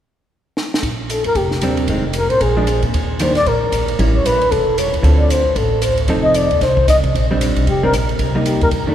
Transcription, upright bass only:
0, 0, Header, 1, 2, 480
1, 0, Start_track
1, 0, Key_signature, -2, "major"
1, 0, Tempo, 262812
1, 1523, Time_signature, 4, 2, 24, 8
1, 16344, End_track
2, 0, Start_track
2, 0, Title_t, "Upright bass"
2, 0, Program_c, 0, 32
2, 1514, Note_on_c, 0, 34, 65
2, 2230, Note_off_c, 0, 34, 0
2, 2286, Note_on_c, 0, 41, 67
2, 2457, Note_off_c, 0, 41, 0
2, 2468, Note_on_c, 0, 29, 75
2, 2920, Note_off_c, 0, 29, 0
2, 2957, Note_on_c, 0, 39, 68
2, 3405, Note_off_c, 0, 39, 0
2, 3435, Note_on_c, 0, 29, 61
2, 4149, Note_off_c, 0, 29, 0
2, 4202, Note_on_c, 0, 33, 67
2, 4384, Note_off_c, 0, 33, 0
2, 4398, Note_on_c, 0, 34, 76
2, 5111, Note_off_c, 0, 34, 0
2, 5163, Note_on_c, 0, 46, 57
2, 5344, Note_off_c, 0, 46, 0
2, 5362, Note_on_c, 0, 39, 69
2, 6272, Note_off_c, 0, 39, 0
2, 6329, Note_on_c, 0, 34, 82
2, 6770, Note_off_c, 0, 34, 0
2, 6794, Note_on_c, 0, 34, 68
2, 7242, Note_off_c, 0, 34, 0
2, 7281, Note_on_c, 0, 33, 67
2, 7726, Note_off_c, 0, 33, 0
2, 7761, Note_on_c, 0, 34, 64
2, 8206, Note_off_c, 0, 34, 0
2, 8241, Note_on_c, 0, 28, 74
2, 8952, Note_off_c, 0, 28, 0
2, 9004, Note_on_c, 0, 39, 52
2, 9179, Note_off_c, 0, 39, 0
2, 9190, Note_on_c, 0, 38, 74
2, 10106, Note_off_c, 0, 38, 0
2, 10154, Note_on_c, 0, 33, 71
2, 11068, Note_off_c, 0, 33, 0
2, 11107, Note_on_c, 0, 29, 73
2, 11825, Note_off_c, 0, 29, 0
2, 11888, Note_on_c, 0, 39, 68
2, 12067, Note_off_c, 0, 39, 0
2, 12075, Note_on_c, 0, 36, 78
2, 12523, Note_off_c, 0, 36, 0
2, 12555, Note_on_c, 0, 36, 71
2, 13003, Note_off_c, 0, 36, 0
2, 13056, Note_on_c, 0, 34, 69
2, 13761, Note_off_c, 0, 34, 0
2, 13821, Note_on_c, 0, 35, 65
2, 13994, Note_off_c, 0, 35, 0
2, 14005, Note_on_c, 0, 29, 73
2, 14449, Note_off_c, 0, 29, 0
2, 14480, Note_on_c, 0, 34, 70
2, 14927, Note_off_c, 0, 34, 0
2, 14966, Note_on_c, 0, 36, 70
2, 15676, Note_off_c, 0, 36, 0
2, 15738, Note_on_c, 0, 40, 66
2, 15909, Note_off_c, 0, 40, 0
2, 15920, Note_on_c, 0, 41, 69
2, 16344, Note_off_c, 0, 41, 0
2, 16344, End_track
0, 0, End_of_file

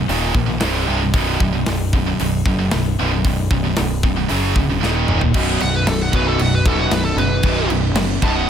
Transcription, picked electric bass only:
0, 0, Header, 1, 2, 480
1, 0, Start_track
1, 0, Key_signature, 5, "major"
1, 0, Tempo, 526316
1, 1030, Time_signature, 4, 2, 24, 8
1, 7750, End_track
2, 0, Start_track
2, 0, Title_t, "Picked electric bass"
2, 0, Program_c, 0, 34
2, 80, Note_on_c, 0, 27, 92
2, 283, Note_off_c, 0, 27, 0
2, 323, Note_on_c, 0, 34, 76
2, 526, Note_off_c, 0, 34, 0
2, 563, Note_on_c, 0, 24, 88
2, 766, Note_off_c, 0, 24, 0
2, 798, Note_on_c, 0, 24, 84
2, 1003, Note_off_c, 0, 24, 0
2, 1041, Note_on_c, 0, 23, 93
2, 1245, Note_off_c, 0, 23, 0
2, 1287, Note_on_c, 0, 23, 81
2, 1488, Note_off_c, 0, 23, 0
2, 1525, Note_on_c, 0, 23, 91
2, 1936, Note_off_c, 0, 23, 0
2, 2003, Note_on_c, 0, 23, 89
2, 2207, Note_off_c, 0, 23, 0
2, 2239, Note_on_c, 0, 30, 81
2, 2445, Note_off_c, 0, 30, 0
2, 2492, Note_on_c, 0, 23, 89
2, 2692, Note_off_c, 0, 23, 0
2, 2734, Note_on_c, 0, 23, 83
2, 2933, Note_off_c, 0, 23, 0
2, 2962, Note_on_c, 0, 23, 84
2, 3167, Note_off_c, 0, 23, 0
2, 3202, Note_on_c, 0, 23, 84
2, 3407, Note_off_c, 0, 23, 0
2, 3459, Note_on_c, 0, 23, 90
2, 3865, Note_off_c, 0, 23, 0
2, 3925, Note_on_c, 0, 30, 85
2, 4128, Note_off_c, 0, 30, 0
2, 4159, Note_on_c, 0, 26, 77
2, 4365, Note_off_c, 0, 26, 0
2, 4400, Note_on_c, 0, 27, 90
2, 4605, Note_off_c, 0, 27, 0
2, 4639, Note_on_c, 0, 27, 91
2, 4845, Note_off_c, 0, 27, 0
2, 4874, Note_on_c, 0, 23, 92
2, 5080, Note_off_c, 0, 23, 0
2, 5122, Note_on_c, 0, 23, 87
2, 5324, Note_off_c, 0, 23, 0
2, 5348, Note_on_c, 0, 23, 98
2, 5555, Note_off_c, 0, 23, 0
2, 5595, Note_on_c, 0, 23, 84
2, 5800, Note_off_c, 0, 23, 0
2, 5821, Note_on_c, 0, 23, 95
2, 6031, Note_off_c, 0, 23, 0
2, 6071, Note_on_c, 0, 27, 85
2, 6276, Note_off_c, 0, 27, 0
2, 6289, Note_on_c, 0, 23, 91
2, 6504, Note_off_c, 0, 23, 0
2, 6524, Note_on_c, 0, 30, 87
2, 6740, Note_off_c, 0, 30, 0
2, 6783, Note_on_c, 0, 23, 93
2, 6991, Note_off_c, 0, 23, 0
2, 7003, Note_on_c, 0, 23, 97
2, 7219, Note_off_c, 0, 23, 0
2, 7229, Note_on_c, 0, 30, 99
2, 7451, Note_off_c, 0, 30, 0
2, 7503, Note_on_c, 0, 23, 92
2, 7710, Note_off_c, 0, 23, 0
2, 7715, Note_on_c, 0, 23, 94
2, 7750, Note_off_c, 0, 23, 0
2, 7750, End_track
0, 0, End_of_file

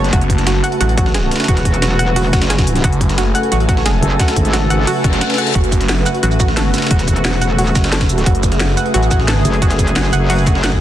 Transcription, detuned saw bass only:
0, 0, Header, 1, 2, 480
1, 0, Start_track
1, 0, Key_signature, 3, "minor"
1, 0, Tempo, 338983
1, 181, Time_signature, 4, 2, 24, 8
1, 15303, End_track
2, 0, Start_track
2, 0, Title_t, "Detuned saw bass"
2, 0, Program_c, 0, 39
2, 180, Note_on_c, 0, 30, 93
2, 881, Note_off_c, 0, 30, 0
2, 1140, Note_on_c, 0, 33, 98
2, 1841, Note_off_c, 0, 33, 0
2, 4020, Note_on_c, 0, 30, 92
2, 4721, Note_off_c, 0, 30, 0
2, 4980, Note_on_c, 0, 33, 98
2, 5681, Note_off_c, 0, 33, 0
2, 7860, Note_on_c, 0, 30, 93
2, 8561, Note_off_c, 0, 30, 0
2, 8820, Note_on_c, 0, 33, 95
2, 9521, Note_off_c, 0, 33, 0
2, 11700, Note_on_c, 0, 30, 99
2, 12401, Note_off_c, 0, 30, 0
2, 12661, Note_on_c, 0, 33, 94
2, 13362, Note_off_c, 0, 33, 0
2, 15303, End_track
0, 0, End_of_file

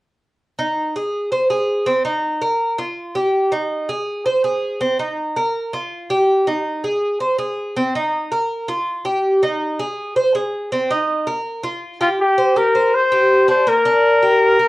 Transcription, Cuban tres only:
0, 0, Header, 1, 2, 480
1, 0, Start_track
1, 0, Key_signature, -3, "minor"
1, 0, Tempo, 368550
1, 517, Time_signature, 4, 2, 24, 8
1, 19122, End_track
2, 0, Start_track
2, 0, Title_t, "Cuban tres"
2, 0, Program_c, 0, 25
2, 763, Note_on_c, 0, 63, 68
2, 1224, Note_off_c, 0, 63, 0
2, 1248, Note_on_c, 0, 68, 62
2, 1706, Note_off_c, 0, 68, 0
2, 1717, Note_on_c, 0, 72, 63
2, 1947, Note_off_c, 0, 72, 0
2, 1955, Note_on_c, 0, 68, 65
2, 2418, Note_off_c, 0, 68, 0
2, 2426, Note_on_c, 0, 60, 72
2, 2661, Note_off_c, 0, 60, 0
2, 2668, Note_on_c, 0, 63, 65
2, 3133, Note_off_c, 0, 63, 0
2, 3146, Note_on_c, 0, 70, 63
2, 3612, Note_off_c, 0, 70, 0
2, 3626, Note_on_c, 0, 65, 62
2, 4092, Note_off_c, 0, 65, 0
2, 4105, Note_on_c, 0, 67, 69
2, 4571, Note_off_c, 0, 67, 0
2, 4582, Note_on_c, 0, 63, 72
2, 5049, Note_off_c, 0, 63, 0
2, 5066, Note_on_c, 0, 68, 63
2, 5531, Note_off_c, 0, 68, 0
2, 5544, Note_on_c, 0, 72, 68
2, 5777, Note_off_c, 0, 72, 0
2, 5783, Note_on_c, 0, 68, 60
2, 6249, Note_off_c, 0, 68, 0
2, 6261, Note_on_c, 0, 60, 67
2, 6495, Note_off_c, 0, 60, 0
2, 6505, Note_on_c, 0, 63, 64
2, 6970, Note_off_c, 0, 63, 0
2, 6986, Note_on_c, 0, 70, 63
2, 7451, Note_off_c, 0, 70, 0
2, 7466, Note_on_c, 0, 65, 65
2, 7931, Note_off_c, 0, 65, 0
2, 7946, Note_on_c, 0, 67, 68
2, 8411, Note_off_c, 0, 67, 0
2, 8428, Note_on_c, 0, 63, 65
2, 8893, Note_off_c, 0, 63, 0
2, 8908, Note_on_c, 0, 68, 61
2, 9373, Note_off_c, 0, 68, 0
2, 9381, Note_on_c, 0, 72, 63
2, 9611, Note_off_c, 0, 72, 0
2, 9617, Note_on_c, 0, 68, 65
2, 10087, Note_off_c, 0, 68, 0
2, 10112, Note_on_c, 0, 60, 67
2, 10343, Note_off_c, 0, 60, 0
2, 10357, Note_on_c, 0, 63, 68
2, 10819, Note_off_c, 0, 63, 0
2, 10831, Note_on_c, 0, 70, 64
2, 11296, Note_off_c, 0, 70, 0
2, 11308, Note_on_c, 0, 65, 65
2, 11774, Note_off_c, 0, 65, 0
2, 11786, Note_on_c, 0, 67, 72
2, 12254, Note_off_c, 0, 67, 0
2, 12278, Note_on_c, 0, 63, 68
2, 12740, Note_off_c, 0, 63, 0
2, 12755, Note_on_c, 0, 68, 66
2, 13219, Note_off_c, 0, 68, 0
2, 13234, Note_on_c, 0, 72, 65
2, 13466, Note_off_c, 0, 72, 0
2, 13478, Note_on_c, 0, 68, 66
2, 13941, Note_off_c, 0, 68, 0
2, 13962, Note_on_c, 0, 60, 69
2, 14191, Note_off_c, 0, 60, 0
2, 14204, Note_on_c, 0, 63, 70
2, 14665, Note_off_c, 0, 63, 0
2, 14677, Note_on_c, 0, 70, 66
2, 15142, Note_off_c, 0, 70, 0
2, 15152, Note_on_c, 0, 65, 67
2, 15620, Note_off_c, 0, 65, 0
2, 15638, Note_on_c, 0, 67, 65
2, 15870, Note_off_c, 0, 67, 0
2, 16122, Note_on_c, 0, 72, 70
2, 16353, Note_off_c, 0, 72, 0
2, 16362, Note_on_c, 0, 67, 61
2, 16593, Note_off_c, 0, 67, 0
2, 16604, Note_on_c, 0, 72, 63
2, 17067, Note_off_c, 0, 72, 0
2, 17085, Note_on_c, 0, 67, 69
2, 17548, Note_off_c, 0, 67, 0
2, 17556, Note_on_c, 0, 62, 68
2, 17790, Note_off_c, 0, 62, 0
2, 17801, Note_on_c, 0, 58, 77
2, 18033, Note_off_c, 0, 58, 0
2, 18041, Note_on_c, 0, 62, 71
2, 18506, Note_off_c, 0, 62, 0
2, 18527, Note_on_c, 0, 67, 67
2, 18990, Note_off_c, 0, 67, 0
2, 19006, Note_on_c, 0, 70, 68
2, 19122, Note_off_c, 0, 70, 0
2, 19122, End_track
0, 0, End_of_file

